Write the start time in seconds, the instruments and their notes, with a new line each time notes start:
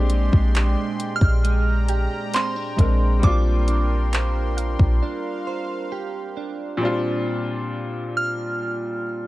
Already playing: 808-style bass A#1, clean electric guitar A#2 D4, grand piano G#3 C4 D4 G4, analog synth pad G#3 D5 G5 C6
0.10 clean electric guitar G#3, closed hi-hat
0.33 808-style bass A#1, kick
0.54 clean electric guitar G#3 D4 G4, clap, closed hi-hat
1.00 closed hi-hat
1.16 synth bell F6
1.21 808-style bass A#1, kick
1.44 clean electric guitar G#3, analog synth pad A#5, closed hi-hat
1.89 clean electric guitar G4, synth pluck G5, closed hi-hat
2.34 clean electric guitar C4, synth bell C6, clap, closed hi-hat
2.56 clean electric guitar D4
2.77 808-style bass A#1, grand piano G#3 C4 D4 A#4, clean electric guitar G#3, kick, closed hi-hat
3.19 grand piano G3 C4
3.23 808-style bass A#1, clean electric guitar A#3, grand piano D4 F4, analog synth pad A#4 C6, synth bell D6, kick, closed hi-hat
3.68 clean electric guitar D4, closed hi-hat
4.13 clean electric guitar D4 G4 C5, clap, closed hi-hat
4.57 synth pluck F5, closed hi-hat
4.79 808-style bass A#1, kick
5.03 clean electric guitar D4, analog synth pad F5
5.47 clean electric guitar C5
5.92 clean electric guitar G4
6.37 clean electric guitar D4
6.77 grand piano A#2 G3 C4
6.83 grand piano D4 F4
8.17 synth bell F6